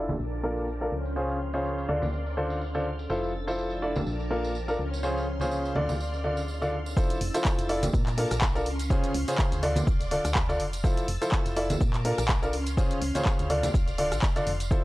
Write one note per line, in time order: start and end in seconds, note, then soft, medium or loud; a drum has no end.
0.00 0.17 F1 medium
0.00 0.49 F3 medium
0.00 0.18 E6 medium
0.00 0.18 A6 medium
0.09 tambourine medium
0.09 high conga medium
0.19 0.90 A#1 medium
0.19 1.32 A#4 medium
0.19 0.91 A#4 medium
0.19 0.91 A5 medium
0.19 0.91 D6 medium
0.19 tambourine medium
0.33 tambourine soft
0.43 0.64 A#2 medium
0.43 0.64 D4 medium
0.43 0.64 F4 medium
0.43 0.64 A4 medium
0.43 0.64 A#4 medium
0.57 tambourine medium
0.67 tambourine medium
0.81 0.91 D4 medium
0.81 0.91 F4 medium
0.81 0.91 A4 medium
0.81 0.91 A#4 medium
0.81 tambourine soft
0.92 1.87 C#2 medium
0.92 1.88 C#4 medium
0.92 3.07 C6 medium
0.92 1.88 F6 medium
1.05 tambourine medium
1.16 1.37 C#3 medium
1.16 1.37 C#4 medium
1.16 1.37 F4 medium
1.16 1.37 G#4 medium
1.16 1.37 C5 medium
1.16 tambourine medium
1.29 tambourine soft
1.53 1.86 C#3 medium
1.53 1.86 C#4 medium
1.53 1.86 F4 medium
1.53 1.86 G#4 medium
1.53 1.86 C5 medium
1.53 tambourine medium
1.64 tambourine medium
1.78 tambourine soft
1.89 3.08 D2 medium
1.89 2.03 D3 medium
1.89 2.03 D4 medium
1.89 3.49 D4 medium
1.89 2.03 F4 medium
1.89 2.03 A4 medium
1.89 2.03 D5 medium
1.89 3.08 D5 medium
1.89 3.09 F6 medium
2.02 tambourine medium
2.02 high conga medium
2.13 3.49 A4 medium
2.13 tambourine medium
2.26 tambourine soft
2.37 2.58 D3 medium
2.37 2.58 D4 medium
2.37 2.58 F4 medium
2.37 2.58 A4 medium
2.37 2.58 C5 medium
2.50 tambourine medium
2.61 tambourine medium
2.74 2.86 D3 medium
2.74 2.86 D4 medium
2.74 2.86 F4 medium
2.74 2.86 A4 medium
2.74 2.86 C5 medium
2.74 tambourine soft
2.99 tambourine medium
3.10 4.04 F1 medium
3.10 4.36 F3 medium
3.10 3.31 F3 medium
3.10 3.31 E4 medium
3.10 3.31 F4 medium
3.10 3.31 A4 medium
3.10 3.31 C5 medium
3.10 4.06 E6 medium
3.10 4.06 A6 medium
3.10 tambourine medium
3.23 tambourine soft
3.47 3.80 F3 medium
3.47 3.80 E4 medium
3.47 3.80 F4 medium
3.47 3.80 A4 medium
3.47 3.80 C5 medium
3.47 tambourine medium
3.58 tambourine medium
3.70 tambourine soft
3.82 3.96 E4 medium
3.82 3.96 F4 medium
3.82 3.96 A4 medium
3.82 3.96 D5 medium
3.96 tambourine medium
3.96 high conga medium
4.06 4.77 A#1 medium
4.06 5.19 A#4 medium
4.06 4.78 A#4 medium
4.06 4.78 A5 medium
4.06 4.78 D6 medium
4.06 tambourine medium
4.20 tambourine soft
4.31 4.52 A#2 medium
4.31 4.52 D4 medium
4.31 4.52 F4 medium
4.31 4.52 A4 medium
4.31 4.52 A#4 medium
4.44 tambourine medium
4.55 tambourine medium
4.68 4.78 D4 medium
4.68 4.78 F4 medium
4.68 4.78 A4 medium
4.68 4.78 A#4 medium
4.68 tambourine soft
4.79 5.74 C#2 medium
4.79 5.75 C#4 medium
4.79 6.95 C6 medium
4.79 6.95 F6 medium
4.94 tambourine medium
5.03 5.24 C#3 medium
5.03 5.24 C#4 medium
5.03 5.24 F4 medium
5.03 5.24 G#4 medium
5.03 5.24 C5 medium
5.03 tambourine medium
5.18 tambourine soft
5.40 5.73 C#3 medium
5.40 5.73 C#4 medium
5.40 5.73 F4 medium
5.40 5.73 G#4 medium
5.40 5.73 C5 medium
5.40 tambourine medium
5.40 high conga medium
5.51 tambourine medium
5.65 tambourine soft
5.75 6.95 D2 medium
5.75 5.90 D3 medium
5.75 5.90 D4 medium
5.75 6.97 D4 medium
5.75 5.90 F4 medium
5.75 5.90 A4 medium
5.75 5.90 D5 medium
5.75 6.96 D5 medium
5.75 high conga medium
5.89 tambourine medium
5.89 high conga medium
6.00 tambourine medium
6.14 tambourine soft
6.24 6.38 D3 medium
6.24 6.38 D4 medium
6.24 6.38 F4 medium
6.24 6.38 A4 medium
6.24 6.38 D5 medium
6.37 tambourine medium
6.48 tambourine medium
6.62 6.73 D3 medium
6.62 6.73 D4 medium
6.62 6.73 F4 medium
6.62 6.73 A4 medium
6.62 6.73 D5 medium
6.62 tambourine soft
6.86 tambourine medium
6.97 7.18 F3 medium
6.97 7.18 E4 medium
6.97 7.18 F4 medium
6.97 7.18 A4 medium
6.97 7.18 C5 loud
6.97 7.93 E6 medium
6.97 7.93 A6 medium
6.97 kick loud
6.97 tambourine medium
6.97 shaker medium
7.10 closed hi-hat medium
7.10 tambourine soft
7.10 shaker soft
7.21 7.31 F1 loud
7.21 open hi-hat loud
7.34 7.67 F3 medium
7.34 7.67 E4 medium
7.34 7.67 F4 medium
7.34 7.67 A4 medium
7.34 7.67 C5 loud
7.34 closed hi-hat medium
7.34 tambourine medium
7.34 shaker medium
7.45 kick loud
7.45 clap loud
7.45 tambourine medium
7.45 shaker medium
7.58 7.89 F1 medium
7.58 closed hi-hat medium
7.58 tambourine soft
7.58 shaker soft
7.69 7.83 E4 medium
7.69 7.83 F4 medium
7.69 7.83 A4 medium
7.69 7.83 D5 medium
7.69 open hi-hat medium
7.83 closed hi-hat medium
7.83 tambourine medium
7.83 high conga medium
7.83 shaker medium
7.93 8.26 A#2 loud
7.93 8.65 A#4 medium
7.93 8.65 A5 medium
7.93 8.65 D6 medium
7.93 kick loud
7.93 tambourine medium
7.93 shaker medium
8.06 clap soft
8.06 closed hi-hat soft
8.06 tambourine soft
8.06 shaker soft
8.18 8.32 A#2 medium
8.18 8.32 D4 medium
8.18 8.32 F4 medium
8.18 8.32 A4 medium
8.18 8.32 A#4 medium
8.18 open hi-hat loud
8.31 8.68 A#1 medium
8.31 cross-stick medium
8.31 closed hi-hat medium
8.31 tambourine medium
8.31 shaker medium
8.41 kick loud
8.41 clap loud
8.41 tambourine medium
8.41 shaker medium
8.55 8.65 D4 medium
8.55 8.65 F4 medium
8.55 8.65 A4 medium
8.55 8.65 A#4 loud
8.55 tambourine soft
8.55 shaker soft
8.66 8.98 C#2 medium
8.66 9.62 C#4 medium
8.66 10.82 C6 medium
8.66 10.82 F6 medium
8.66 open hi-hat loud
8.79 closed hi-hat medium
8.79 tambourine medium
8.79 shaker medium
8.90 9.11 C#3 medium
8.90 9.11 C#4 medium
8.90 9.11 F4 medium
8.90 9.11 G#4 medium
8.90 9.11 C5 loud
8.90 kick loud
8.90 tambourine medium
8.90 shaker medium
9.03 closed hi-hat medium
9.03 tambourine soft
9.03 shaker soft
9.14 9.25 C#2 loud
9.14 open hi-hat loud
9.28 9.60 C#3 medium
9.28 9.60 C#4 medium
9.28 9.60 F4 medium
9.28 9.60 G#4 medium
9.28 9.60 C5 medium
9.28 closed hi-hat medium
9.28 tambourine medium
9.28 shaker medium
9.38 kick loud
9.38 clap loud
9.38 tambourine medium
9.38 shaker medium
9.52 9.83 D2 medium
9.52 closed hi-hat medium
9.52 tambourine soft
9.52 shaker soft
9.63 9.77 D3 medium
9.63 9.77 D4 medium
9.63 9.77 F4 medium
9.63 9.77 A4 medium
9.63 9.77 D5 medium
9.63 10.83 D5 medium
9.63 open hi-hat loud
9.76 closed hi-hat medium
9.76 tambourine medium
9.76 high conga medium
9.76 shaker medium
9.87 10.19 D1 medium
9.87 kick loud
9.87 tambourine medium
9.87 shaker medium
10.01 closed hi-hat soft
10.01 tambourine soft
10.01 shaker soft
10.11 10.25 D3 medium
10.11 10.25 D4 medium
10.11 10.25 F4 medium
10.11 10.25 A4 medium
10.11 10.25 D5 medium
10.11 open hi-hat loud
10.25 10.61 D2 medium
10.25 cross-stick medium
10.25 closed hi-hat medium
10.25 tambourine medium
10.25 shaker medium
10.35 kick loud
10.35 clap loud
10.35 shaker medium
10.49 10.60 D3 medium
10.49 10.60 D4 medium
10.49 10.60 F4 medium
10.49 10.60 A4 medium
10.49 10.60 D5 loud
10.49 tambourine soft
10.49 shaker soft
10.60 10.92 F1 medium
10.60 open hi-hat loud
10.73 closed hi-hat medium
10.73 tambourine medium
10.73 shaker medium
10.84 11.05 F3 medium
10.84 11.05 E4 medium
10.84 11.05 F4 medium
10.84 11.05 A4 medium
10.84 11.05 C5 medium
10.84 11.80 E6 medium
10.84 11.80 A6 medium
10.84 kick loud
10.84 tambourine medium
10.84 shaker soft
10.97 closed hi-hat soft
10.97 tambourine soft
10.97 shaker soft
11.08 11.18 F1 loud
11.08 open hi-hat loud
11.22 11.54 F3 medium
11.22 11.54 E4 medium
11.22 11.54 F4 medium
11.22 11.54 A4 medium
11.22 11.54 C5 medium
11.22 closed hi-hat medium
11.22 tambourine medium
11.22 shaker medium
11.32 kick loud
11.32 clap loud
11.32 tambourine medium
11.32 shaker medium
11.45 11.76 F1 medium
11.45 closed hi-hat medium
11.45 tambourine soft
11.45 shaker soft
11.56 11.71 E4 medium
11.56 11.71 F4 medium
11.56 11.71 A4 medium
11.56 11.71 D5 loud
11.56 open hi-hat loud
11.70 closed hi-hat medium
11.70 tambourine medium
11.70 high conga medium
11.70 shaker medium
11.80 12.13 A#2 loud
11.80 12.53 A#4 medium
11.80 12.53 A5 medium
11.80 12.53 D6 medium
11.80 kick loud
11.80 tambourine medium
11.80 shaker medium
11.94 clap soft
11.94 closed hi-hat soft
11.94 tambourine soft
11.94 shaker soft
12.05 12.19 A#2 medium
12.05 12.19 D4 medium
12.05 12.19 F4 medium
12.05 12.19 A4 medium
12.05 12.19 A#4 medium
12.05 open hi-hat loud
12.18 12.55 A#1 medium
12.18 cross-stick medium
12.18 closed hi-hat medium
12.18 tambourine medium
12.18 shaker medium
12.29 kick loud
12.29 clap loud
12.29 tambourine medium
12.29 shaker medium
12.43 12.52 D4 medium
12.43 12.52 F4 medium
12.43 12.52 A4 medium
12.43 12.52 A#4 medium
12.43 tambourine soft
12.43 shaker soft
12.53 12.85 C#2 medium
12.53 13.49 C#4 medium
12.53 13.49 C6 medium
12.53 14.69 F6 medium
12.53 open hi-hat loud
12.66 closed hi-hat medium
12.66 tambourine medium
12.66 shaker medium
12.77 12.98 C#3 medium
12.77 12.98 C#4 medium
12.77 12.98 F4 medium
12.77 12.98 G#4 medium
12.77 12.98 C5 loud
12.77 kick loud
12.77 tambourine medium
12.77 shaker medium
12.90 closed hi-hat medium
12.90 tambourine soft
12.90 shaker soft
13.02 13.12 C#2 loud
13.02 open hi-hat loud
13.15 13.47 C#3 medium
13.15 13.47 C#4 medium
13.15 13.47 F4 medium
13.15 13.47 G#4 medium
13.15 13.47 C5 medium
13.15 closed hi-hat medium
13.15 tambourine medium
13.15 high conga medium
13.15 shaker medium
13.25 kick loud
13.25 clap loud
13.25 tambourine medium
13.25 shaker medium
13.39 13.70 D2 medium
13.39 closed hi-hat medium
13.39 tambourine soft
13.39 shaker soft
13.50 13.64 D3 medium
13.50 13.64 D4 medium
13.50 13.64 F4 medium
13.50 13.64 A4 medium
13.50 14.70 D5 medium
13.50 13.64 D5 loud
13.50 14.70 C6 medium
13.50 open hi-hat loud
13.63 closed hi-hat medium
13.63 tambourine medium
13.63 high conga medium
13.63 shaker medium
13.74 14.13 D1 loud
13.74 kick loud
13.74 tambourine medium
13.74 shaker medium
13.88 closed hi-hat soft
13.88 tambourine soft
13.88 shaker soft
13.98 14.12 D3 medium
13.98 14.12 D4 medium
13.98 14.12 F4 medium
13.98 14.12 A4 medium
13.98 14.12 D5 medium
13.98 open hi-hat loud
14.12 14.20 A1 loud
14.12 cross-stick medium
14.12 closed hi-hat medium
14.12 tambourine medium
14.12 shaker medium
14.22 kick loud
14.22 clap loud
14.22 tambourine medium
14.22 shaker medium
14.36 14.48 D3 medium
14.36 14.48 D4 medium
14.36 14.48 F4 medium
14.36 14.48 A4 medium
14.36 14.48 D5 medium
14.36 closed hi-hat soft
14.36 tambourine soft
14.36 shaker soft
14.47 14.79 F1 medium
14.47 open hi-hat loud
14.60 closed hi-hat medium
14.60 tambourine medium
14.60 shaker medium
14.71 14.84 F3 medium
14.71 14.84 E4 medium
14.71 14.84 F4 medium
14.71 14.84 A4 medium
14.71 14.84 C5 loud
14.71 14.84 E6 medium
14.71 14.84 A6 medium
14.71 kick loud
14.71 shaker medium